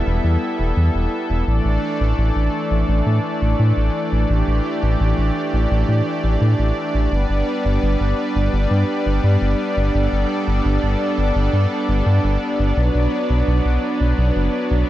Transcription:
Already playing: G3 B3 E4 A4 E5
0.07 E1
0.24 E2
0.59 E1
0.77 E2
0.95 E1
1.30 E1
1.47 A1 E3 A3 D4 D5
1.65 A1
2.01 A1
2.18 A1
2.36 A1
2.71 A1
2.89 A1
3.06 A2
3.42 A1
3.59 A2
3.77 A1
4.12 A1
4.30 A1 G4
4.47 A1
4.83 A1
5.00 A1
5.18 A1
5.53 A1
5.71 A1
5.89 A2
6.24 A1
6.41 A2
6.59 A1
6.94 A1
7.12 G1 G3 B3 B4
7.30 G1
7.65 G1
7.83 G1
8.00 G1
8.36 G1
8.53 G1
8.71 G2
9.06 G1
9.24 G2
9.42 G1
9.77 G1
9.94 G1 A4
10.12 G1
10.47 G1
10.65 G1
10.83 G1
11.18 G1
11.36 G1
11.53 G2
11.89 G1
12.06 G2
12.24 G1
12.59 G1
12.77 B1 F#3 B4
12.95 B1
13.30 B1
13.48 B1
13.65 B1
14.01 B1
14.18 B1
14.36 F#1
14.71 B1

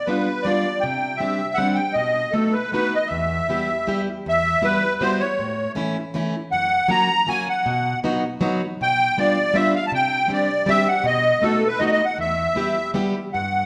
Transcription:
0.06 G3 B3 D4 F4 B4
0.43 G3 B3 D4 D5
0.47 F4
0.80 C3 G5
1.17 G3 C4 D4 E5
1.21 G4
1.54 G3 F#5
1.58 C4 D4 G4
1.74 G5
1.93 B2 D#5
2.32 A3 B3 D#4 F#4 A4
2.52 B4
2.72 A3 B3 D#4 F#4 B4
2.96 D#5
3.07 E2 E5
3.49 G3 B3 E4 G4
3.87 G3 B3 E4 G4
4.26 E2 E5
4.62 G3 B3 E4 F#4 B4
5.01 G3 B3 E4 F#4 C5
5.20 C#5
5.39 A2
5.75 E3 A3 C#4 E4
6.14 E3 A3 C#4 E4
6.52 F#2 F#5
6.88 F#3 A#3 C#4 F#4 A#5
7.27 F#3 A#3 C#4 F#4 G#5
7.49 F#5
7.66 B2
8.04 F#3 B3 D#4 F#4
8.41 F#3 B3 D#4 F#4
8.81 B2 G5
9.18 G3 B3 D4 F4 D5
9.54 G3 B3 D4 F4 E5
9.76 F5
9.87 A5
9.92 C3 G5
10.28 G3 C4 D4 G4
10.33 D5
10.66 G3 C4 D4 G4 E5
10.88 F#5
11.04 B2 D#5
11.42 A3 B3 D#4 F#4 A4
11.67 B4
11.79 A3 B3 D#4 F#4 D#5
11.87 D#5
11.92 D#5
12.05 F#5
12.18 E2 E5
12.55 G3 B3 E4 G4
12.94 G3 B3 E4 G4
13.33 G2 F#5

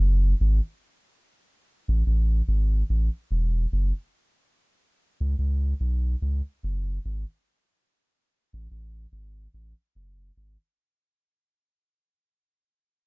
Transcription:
0.00 F#1
0.40 G#1
1.88 A1
2.06 A1
2.48 G#1
2.89 A1
3.31 E1
3.72 F#1
5.20 C#2
5.38 C#2
5.80 B1
6.22 C#2
6.63 F#1
7.05 G#1
8.53 A1
8.71 A1
9.12 G#1
9.54 A1
9.95 F#1
10.37 G#1

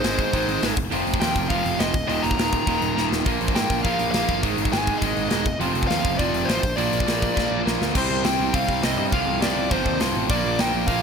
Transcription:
Already playing: C5
0.03 G#1 G#2 D#3 G#3, snare, open hi-hat
0.19 kick, open hi-hat
0.33 G#1 G#2 D#3 G#3, kick, open hi-hat
0.48 G#1, open hi-hat
0.62 G#1 G#2 D#3 G#3, snare, open hi-hat
0.77 F1, kick, open hi-hat
0.92 F1 F2 C3 F3, open hi-hat
1.07 F1, open hi-hat
1.14 kick
1.20 D#2 F2 C3 F3 G5, snare, open hi-hat
1.35 F1, kick, open hi-hat
1.49 F1 F2 C3 F3 F5, kick, open hi-hat
1.65 F1, open hi-hat
1.79 F1 F2 C3 F3 D#5, snare, open hi-hat
1.94 D#1, kick, open hi-hat
2.07 D#1 D#2 A#2 D#3 D#5, open hi-hat
2.23 D#1 A#5, open hi-hat
2.31 kick
2.37 D#1 D#2 A#2 D#3, snare, open hi-hat
2.53 kick, open hi-hat
2.66 D#1 D#2 A#2 D#3, kick, open hi-hat
2.81 D#1, open hi-hat
2.96 D#1 D#2 A#2 D#3, snare
3.11 D#1, snare
3.26 A#1 A#2 F3 A#3, kick, open hi-hat
3.41 A#1, open hi-hat
3.48 kick
3.55 G#2 A#2 F3 A#3 G5, snare, open hi-hat
3.70 A#1, kick, open hi-hat
3.83 A#1 A#2 F3 A#3 F5, kick, open hi-hat
3.99 A#1, open hi-hat
4.11 A#1 A#2 F3 A#3 F5, snare, open hi-hat
4.28 G1, kick, open hi-hat
4.42 G#1 G#2 D#3 G#3, kick, open hi-hat
4.57 G#1, open hi-hat
4.65 kick
4.72 G#1 G#2 D#3 G#3 G#5, snare, open hi-hat
4.87 kick, open hi-hat
4.98 G#2 D#3 D#5
5.02 G#1 G#3, kick, open hi-hat
5.17 G#1, open hi-hat
5.29 E1 G#2 D#3 G#3 D#5, snare, open hi-hat
5.46 F1, kick, open hi-hat
5.60 F1 F2 C3 F3, open hi-hat
5.74 F1, open hi-hat
5.83 kick
5.88 D#2 F2 C3 F3 F5, snare, open hi-hat
6.05 F1, kick, open hi-hat
6.18 F1 F2 C3 F3 D5, kick, open hi-hat
6.33 F1, open hi-hat
6.45 A1 F2 C3 F3 C5, open hi-hat
6.50 snare
6.63 A#1, kick, open hi-hat
6.76 A#1 A#2 F3 A#3 D5, open hi-hat
6.92 A#1, open hi-hat
7.00 kick
7.06 A#1 A#2 F3 A#3, snare, open hi-hat
7.22 kick, open hi-hat
7.36 A#1 A#2 F3 A#3, kick, snare
7.51 A#1
7.66 A#1 A#2 F3 A#3, snare
7.81 D2, snare
7.94 C2 C3 G3 C4 C5, kick, crash
8.10 C2
8.23 C2 C3 G3 C4 G5, snare, open hi-hat
8.39 C2
8.52 C2 C3 G3 C4 F5, kick, open hi-hat
8.69 C2, kick
8.83 C2 C3 G3 C4 D#5, snare, open hi-hat
8.97 G2 D#5
9.12 C2 F2 C3 F3 F5, kick, open hi-hat
9.27 C2
9.41 C2 F2 C3 F3 D5, snare, open hi-hat
9.55 C2
9.71 G1 F2 C3 F3 C5, kick, open hi-hat
9.86 D#2, kick
10.00 C2 F2 C3 F3, snare, open hi-hat
10.15 A1
10.30 A#1 A#2 F3 A#3 D5, kick, open hi-hat
10.45 A#1
10.58 A#1 A#2 F3 A#3 G5, snare, open hi-hat
10.73 A#1
10.87 A#1 A#2 F3 A#3 F5, kick, open hi-hat

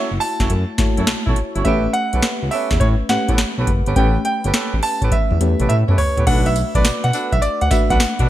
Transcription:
Already playing: A3 C#4 E4 F#4 A4 C#5
0.11 F#1
0.20 A5, open hi-hat
0.40 F#1 C#4 E4 F#4 A4 C#5, kick, snare, closed hi-hat
0.50 F#2, closed hi-hat
0.78 F#2 A3 E4 F#4 C#5, kick, snare, closed hi-hat
0.97 F#2 C#4 E4 F#4 A4 C#5, closed hi-hat
1.07 B1, snare, closed hi-hat
1.26 B1 C#4 E4 F#4 A4 C#5, kick
1.36 closed hi-hat
1.55 G1 C#4 E4 F#4 A4 C#5, closed hi-hat
1.65 A1 A3 B3 C#4 G4 A4 B4 E5, kick, closed hi-hat
1.93 F#5, closed hi-hat
2.13 B1 B3 C#4 G4 A4 B4, closed hi-hat
2.22 snare, closed hi-hat
2.42 C#2
2.51 B3 C#4 G4 A4 B4 E5, open hi-hat
2.71 E2, kick, snare, closed hi-hat
2.80 A2 C#5, kick, closed hi-hat
3.09 A2 A3 C#4 G4 B4 F#5, snare, closed hi-hat
3.28 A2 B3 C#4 G4 A4 B4, kick, closed hi-hat
3.38 snare, closed hi-hat
3.57 B1 B3 C#4 G4 A4 B4
3.67 F#1, kick, closed hi-hat
3.86 G1 B3 C#4 G4 A4 B4, closed hi-hat
3.96 A1 A3 B3 C#4 G4 A4 B4 G5, kick, closed hi-hat
4.25 G5, closed hi-hat
4.44 G1 B3 C#4 G4 A4 B4, closed hi-hat
4.53 B3 C#4 G4 A4 B4, snare, closed hi-hat
4.74 A1
4.83 A5, open hi-hat
5.02 A1 B3 C#4 G4 A4 B4, kick, closed hi-hat
5.11 E5, kick, closed hi-hat, high tom
5.31 E2, high tom
5.40 E2 A3 C#4 G4 B4, closed hi-hat
5.59 A1 B3 C#4 G4 A4 B4, closed hi-hat, mid tom
5.69 A2 E5, closed hi-hat
5.88 F#2 B3 C#4 G4 A4 B4, mid tom
5.98 C#5, floor tom, open hi-hat
6.17 A1 B3 C#4 G4 A4 B4, closed hi-hat, floor tom
6.26 B1 A3 B3 D4 F#4 A4 B4 F#5, kick, closed hi-hat, crash
6.46 E5, closed hi-hat
6.56 closed hi-hat, tambourine
6.74 B1 B3 D4 F#4 A4 B4 D5, kick, closed hi-hat
6.85 B2, snare, closed hi-hat, tambourine
7.04 B2 F#5, closed hi-hat
7.13 B3 D4 F#4 A4 B4, closed hi-hat, tambourine
7.32 B1 E5, kick, closed hi-hat
7.42 D5, closed hi-hat, tambourine
7.61 D2 F#5, closed hi-hat
7.71 A3 D4 F#4 B4 E5, kick, snare, closed hi-hat, tambourine
7.90 B1 B3 D4 F#4 A4 B4 F#5, kick, closed hi-hat
8.00 snare, closed hi-hat, tambourine
8.19 B2 B3 D4 F#4 A4 B4, kick, closed hi-hat

